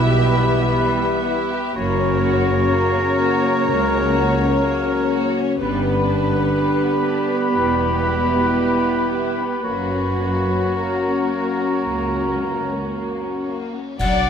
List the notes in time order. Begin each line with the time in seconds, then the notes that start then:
Already playing: B1 B2 E3 G3 B3 E4 G4 B4 E5 B5
0.11 G4
0.36 E4
0.58 B3
0.82 G3
1.05 B3
1.29 E4
1.53 G4
1.76 F#1 F#2 C#3 F#3 A#3 C#4 F#4 A#4 C#5
2.01 C#4
2.24 F#4
2.48 C#4
2.73 A#3 A#5
2.97 C#4
3.21 F#4
3.45 C#4
3.67 C#2 A#3
3.91 C#4
4.15 F#4
4.39 C#4
4.63 A#3
4.89 C#4
5.12 F#4
5.36 C#4
5.59 G1 G2 D3 G3 B3 D4 G4 B4 B5
5.84 B3
6.08 D4
6.33 B3
6.57 G3 B3
6.83 B3
7.06 D4
7.30 B3
7.54 E1 E2 B2 G3 E4 G4
7.81 B3
8.06 E4
8.31 B3
8.58 G3
8.86 B3
9.12 E4
9.40 B3
9.64 F#1 F#2 F#3 A#3 C#4 F#4 C#5
9.94 C#4
10.22 A#3
10.50 C#4
10.76 A#3 A#4 A#5
11.06 C#4
11.33 A#3
11.61 C#4
11.86 C#2 A#3
12.15 C#4
12.42 A#3
12.69 C#4
12.95 A#3
13.23 C#4
13.50 A#3
13.77 C#4
13.99 B1 F#3 D4 D5 F#5, concert bass drum, crash